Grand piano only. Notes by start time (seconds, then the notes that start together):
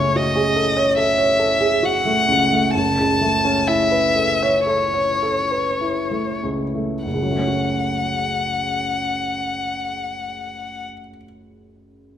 Already playing: F#1 C#2 A3 C#4
0.16 F#4
0.36 G#4
0.56 A4
0.77 C#5
0.97 A4
1.18 C#5
1.40 A4
1.61 G#4
1.83 F#4
2.05 A3
2.28 C#2
2.52 A3
2.75 F#1
2.98 C#2
3.21 A3
3.45 C#4
3.68 E4
3.92 B4
4.16 A4
4.43 C#5
4.67 A4
4.94 C#5
5.23 A4
5.51 B4
5.81 E4
6.11 A3
6.44 C#2
6.75 A3
7.06 F#1
7.14 C#2
7.22 F#3
7.30 A3
7.39 C#4
7.47 F#4